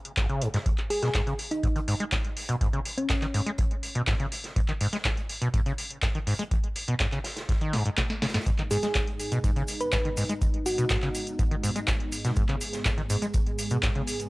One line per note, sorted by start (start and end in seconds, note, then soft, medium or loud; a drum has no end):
0.05 closed hi-hat soft
0.17 0.27 G#1 medium
0.17 kick loud
0.17 snare loud
0.17 clap loud
0.17 closed hi-hat soft
0.17 closed hi-hat medium
0.29 0.43 C#3 medium
0.29 closed hi-hat soft
0.42 0.48 G#2 medium
0.42 closed hi-hat medium
0.54 0.58 G#2 loud
0.54 snare medium
0.54 closed hi-hat soft
0.66 0.70 G#1 medium
0.66 kick loud
0.66 closed hi-hat soft
0.66 closed hi-hat medium
0.78 clap soft
0.78 closed hi-hat soft
0.90 0.98 G#4 medium
0.90 closed hi-hat medium
0.90 open hi-hat medium
1.03 1.09 B2 medium
1.03 1.10 G#4 medium
1.03 snare soft
1.03 closed hi-hat soft
1.14 1.21 G#2 medium
1.14 kick medium
1.14 snare loud
1.14 clap loud
1.14 closed hi-hat medium
1.14 closed hi-hat soft
1.27 1.34 C#3 medium
1.27 closed hi-hat soft
1.39 closed hi-hat medium
1.39 open hi-hat medium
1.51 1.69 D#4 medium
1.51 closed hi-hat soft
1.63 1.68 G#2 medium
1.63 kick loud
1.63 closed hi-hat medium
1.63 closed hi-hat soft
1.76 1.80 D#3 medium
1.76 closed hi-hat soft
1.88 1.95 G#2 medium
1.88 closed hi-hat medium
1.88 open hi-hat loud
2.00 2.04 G#3 medium
2.00 closed hi-hat soft
2.12 2.16 G#1 medium
2.12 kick loud
2.12 snare loud
2.12 clap loud
2.12 closed hi-hat medium
2.12 closed hi-hat soft
2.24 closed hi-hat soft
2.37 open hi-hat medium
2.49 2.56 B2 medium
2.49 closed hi-hat soft
2.61 2.68 G#2 medium
2.61 kick loud
2.61 closed hi-hat soft
2.61 closed hi-hat medium
2.73 2.80 C#3 medium
2.73 closed hi-hat soft
2.85 closed hi-hat medium
2.85 open hi-hat medium
2.98 3.46 C#4 medium
2.98 closed hi-hat soft
3.10 3.14 G#2 medium
3.10 kick medium
3.10 snare loud
3.10 clap loud
3.10 closed hi-hat soft
3.10 closed hi-hat medium
3.22 3.26 D#3 medium
3.22 clap soft
3.22 closed hi-hat soft
3.34 3.41 G#2 medium
3.34 closed hi-hat medium
3.34 open hi-hat medium
3.46 3.50 G#3 loud
3.46 closed hi-hat soft
3.58 3.63 G#1 medium
3.58 kick loud
3.58 closed hi-hat medium
3.58 closed hi-hat soft
3.71 closed hi-hat soft
3.83 closed hi-hat medium
3.83 open hi-hat medium
3.95 4.02 B2 medium
3.95 closed hi-hat soft
4.07 4.14 G#2 medium
4.07 kick loud
4.07 snare loud
4.07 clap loud
4.07 closed hi-hat soft
4.07 closed hi-hat medium
4.20 4.26 C#3 medium
4.20 closed hi-hat soft
4.32 closed hi-hat medium
4.32 open hi-hat medium
4.44 snare soft
4.44 closed hi-hat medium
4.56 4.60 G#2 medium
4.56 kick loud
4.56 closed hi-hat medium
4.68 4.72 D#3 medium
4.68 clap soft
4.68 closed hi-hat soft
4.81 4.87 G#2 medium
4.81 closed hi-hat medium
4.81 open hi-hat medium
4.93 4.97 G#3 loud
4.93 snare soft
4.93 closed hi-hat medium
5.05 5.09 G#1 medium
5.05 kick medium
5.05 snare loud
5.05 clap loud
5.05 closed hi-hat medium
5.05 closed hi-hat soft
5.17 closed hi-hat soft
5.29 closed hi-hat medium
5.29 open hi-hat medium
5.41 5.48 B2 medium
5.41 closed hi-hat soft
5.54 5.60 G#2 medium
5.54 kick loud
5.54 closed hi-hat medium
5.66 5.73 C#3 medium
5.66 closed hi-hat soft
5.78 closed hi-hat medium
5.78 open hi-hat medium
5.90 closed hi-hat soft
6.02 6.07 G#2 medium
6.02 kick loud
6.02 snare loud
6.02 clap loud
6.02 closed hi-hat soft
6.02 closed hi-hat medium
6.15 6.19 D#3 medium
6.15 closed hi-hat soft
6.27 6.34 G#2 medium
6.27 open hi-hat medium
6.39 6.43 G#3 loud
6.39 closed hi-hat soft
6.51 6.55 G#1 medium
6.51 kick loud
6.51 closed hi-hat medium
6.51 closed hi-hat soft
6.64 closed hi-hat soft
6.75 closed hi-hat medium
6.75 open hi-hat loud
6.88 6.95 B2 medium
6.88 closed hi-hat medium
7.00 7.07 G#2 medium
7.00 kick medium
7.00 snare loud
7.00 clap loud
7.00 closed hi-hat medium
7.12 7.19 C#3 medium
7.12 clap soft
7.12 closed hi-hat soft
7.24 snare loud
7.24 closed hi-hat medium
7.24 open hi-hat medium
7.36 snare loud
7.36 closed hi-hat medium
7.36 closed hi-hat soft
7.49 7.53 G#2 medium
7.49 kick loud
7.49 snare loud
7.49 closed hi-hat medium
7.61 7.75 D#3 medium
7.61 closed hi-hat soft
7.73 7.83 G#2 medium
7.73 snare medium
7.73 open hi-hat medium
7.86 7.90 G#2 medium
7.86 closed hi-hat medium
7.97 8.02 B2 medium
7.97 kick loud
7.97 snare medium
7.97 snare loud
7.97 clap loud
7.97 closed hi-hat medium
8.10 snare medium
8.10 closed hi-hat soft
8.22 8.26 C#3 medium
8.22 snare medium
8.22 closed hi-hat medium
8.22 open hi-hat medium
8.28 snare medium
8.28 closed hi-hat medium
8.34 8.38 G#2 medium
8.34 snare medium
8.34 closed hi-hat medium
8.40 snare medium
8.40 closed hi-hat medium
8.46 8.51 G#2 medium
8.46 14.29 G#2 medium
8.46 14.29 G#3 medium
8.46 14.29 B3 medium
8.46 12.35 D#4 medium
8.46 kick loud
8.46 closed hi-hat medium
8.46 shaker soft
8.58 8.63 D#3 medium
8.58 clap soft
8.58 closed hi-hat soft
8.71 8.78 G#2 medium
8.71 8.79 G#4 medium
8.71 closed hi-hat medium
8.71 open hi-hat loud
8.71 shaker medium
8.82 8.87 G#3 loud
8.82 8.91 G#4 medium
8.82 snare soft
8.82 closed hi-hat medium
8.82 shaker soft
8.95 8.99 G#1 medium
8.95 kick loud
8.95 snare loud
8.95 clap loud
8.95 closed hi-hat soft
8.95 closed hi-hat medium
8.95 shaker soft
9.07 closed hi-hat soft
9.20 closed hi-hat medium
9.20 open hi-hat medium
9.20 shaker medium
9.32 9.39 B2 medium
9.32 closed hi-hat soft
9.32 closed hi-hat medium
9.32 shaker soft
9.44 9.51 G#2 medium
9.44 kick loud
9.44 closed hi-hat medium
9.44 shaker medium
9.56 9.63 C#3 medium
9.56 closed hi-hat soft
9.68 closed hi-hat medium
9.68 open hi-hat loud
9.68 shaker medium
9.80 9.88 B4 medium
9.80 closed hi-hat medium
9.80 shaker soft
9.92 9.97 G#2 medium
9.92 10.01 B4 medium
9.92 kick loud
9.92 snare loud
9.92 clap loud
9.92 closed hi-hat medium
9.92 shaker medium
10.05 10.09 D#3 medium
10.05 closed hi-hat soft
10.17 10.24 G#2 medium
10.17 open hi-hat medium
10.17 shaker medium
10.29 10.33 G#3 loud
10.29 closed hi-hat medium
10.29 closed hi-hat soft
10.29 shaker soft
10.41 10.46 G#1 medium
10.41 kick loud
10.41 closed hi-hat medium
10.41 shaker soft
10.54 closed hi-hat soft
10.66 11.34 F#4 medium
10.66 closed hi-hat medium
10.66 open hi-hat loud
10.66 shaker medium
10.78 10.85 B2 medium
10.78 closed hi-hat medium
10.78 shaker soft
10.90 10.97 G#2 medium
10.90 kick loud
10.90 snare loud
10.90 clap loud
10.90 closed hi-hat medium
10.90 shaker soft
11.02 11.09 C#3 medium
11.02 clap soft
11.02 closed hi-hat soft
11.14 closed hi-hat medium
11.14 open hi-hat medium
11.14 shaker medium
11.27 closed hi-hat soft
11.27 shaker soft
11.39 11.43 G#2 medium
11.39 kick loud
11.39 closed hi-hat soft
11.39 closed hi-hat medium
11.39 shaker medium
11.51 11.55 D#3 medium
11.51 closed hi-hat soft
11.63 11.70 G#2 medium
11.63 closed hi-hat medium
11.63 open hi-hat loud
11.63 shaker medium
11.76 11.80 G#3 loud
11.76 closed hi-hat soft
11.76 shaker soft
11.87 11.92 G#1 medium
11.87 kick loud
11.87 snare loud
11.87 clap loud
11.87 closed hi-hat medium
11.87 shaker soft
12.00 closed hi-hat soft
12.12 closed hi-hat medium
12.12 open hi-hat loud
12.12 shaker medium
12.24 12.31 B2 medium
12.24 snare soft
12.24 closed hi-hat medium
12.24 shaker soft
12.36 12.43 G#2 medium
12.36 14.29 G#4 medium
12.36 kick loud
12.36 closed hi-hat soft
12.36 closed hi-hat medium
12.36 shaker soft
12.49 12.56 C#3 medium
12.49 clap soft
12.49 closed hi-hat soft
12.61 closed hi-hat medium
12.61 open hi-hat loud
12.61 shaker medium
12.73 snare soft
12.73 closed hi-hat medium
12.73 shaker soft
12.85 12.89 G#2 medium
12.85 kick loud
12.85 snare loud
12.85 clap loud
12.85 closed hi-hat medium
12.85 shaker medium
12.98 13.02 D#3 medium
12.98 closed hi-hat soft
13.09 13.17 G#2 medium
13.09 closed hi-hat medium
13.09 open hi-hat loud
13.09 shaker medium
13.22 13.26 G#3 loud
13.22 closed hi-hat soft
13.22 shaker soft
13.34 13.38 G#1 medium
13.34 kick loud
13.34 closed hi-hat medium
13.34 closed hi-hat soft
13.34 shaker medium
13.46 closed hi-hat soft
13.59 closed hi-hat medium
13.59 open hi-hat loud
13.59 shaker medium
13.70 13.78 B2 medium
13.70 closed hi-hat soft
13.70 shaker soft
13.83 13.90 G#2 medium
13.83 kick loud
13.83 snare loud
13.83 clap loud
13.83 closed hi-hat medium
13.83 closed hi-hat soft
13.83 shaker medium
13.95 14.02 C#3 medium
13.95 closed hi-hat soft
14.07 open hi-hat medium
14.07 open hi-hat loud
14.07 shaker medium
14.20 closed hi-hat soft
14.20 shaker soft